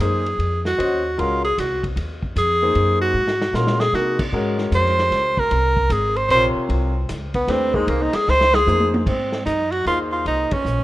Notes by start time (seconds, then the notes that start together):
0.00 F#2 A#3 D#4 G#4 C5, hi-hat pedal, ride
0.26 ride
0.38 F2, ride
0.65 F#4, snare
0.78 D#2 C#4 F#4 C5 D#5, ride
1.17 C#2 G#3 C#4 F4 F#4 A#4, ride
1.45 G#4, ride
1.58 C2 F#4, snare, hi-hat pedal, ride
1.83 kick, ride
1.96 D#2, ride
2.23 kick
2.36 F2 G#4, hi-hat pedal, ride
2.62 A#3 D#4 G#4 C5
2.75 F#2, ride
3.01 F#4
3.14 G#2
3.28 snare
3.42 snare
3.53 A#2 G#3 C#4 F4 F#4 A#4, snare, hi-hat pedal
3.67 snare
3.80 G#4, snare
3.93 C3 A#3 D#4 F#4 G#4 A#4, snare
4.19 kick, crash
4.32 G#2 G#3 C#4 F#4 A#4
4.58 snare
4.71 F2 C5, hi-hat pedal, ride
4.86 snare
4.99 snare
5.11 C#2, snare, ride
5.37 A#4, kick
5.51 C2, ride
5.77 kick
5.90 G#1 G#4, hi-hat pedal, ride
6.16 C5, ride
6.29 A#1 C3 F4 A#4 C5 C#5, hi-hat pedal, ride
6.55 muted upright bass stroke
6.69 C2, ride
7.09 C#2, snare, hi-hat pedal, ride
7.34 B3, kick, ride
7.48 D#2 A3 C4 D4 G4 B4, snare, ride
7.74 G#3 A#3 D#4 G#4 C5, kick
7.87 C2 A#3, ride
8.02 D#4
8.13 G#4, muted upright bass stroke, snare, ride
8.28 C#2 C5, snare
8.41 snare
8.54 G#4, snare
8.67 F2 A#3 D#4 G#4 C5, hi-hat pedal, high tom
8.80 high tom
8.94 high tom
9.06 G#2 C4, kick, crash
9.32 snare
9.46 F#2 D#4, hi-hat pedal, ride
9.71 F#4, ride
9.86 D#2 A#3 D#4 F4 G#4 C5, ride
10.12 F4
10.26 C2 D#4, ride
10.51 C#4, muted upright bass stroke, kick, ride
10.65 A#1, hi-hat pedal
10.79 G#1